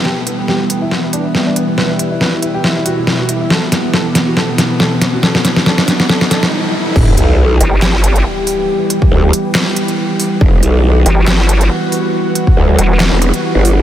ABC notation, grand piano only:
X:1
M:4/4
L:1/16
Q:"Swing 16ths" 1/4=139
K:Em
V:1 name="Grand piano"
G B, B, B, G B, B, E B, B, D B, B, D B, B, | B E E E B E E G E E F E E F E E | A B, B, B, A B, B, F A B, B, B, A B, B, F | A B, B, B, A B, B, B, A B, A B, z4 |
z16 | z16 | z16 | z16 |]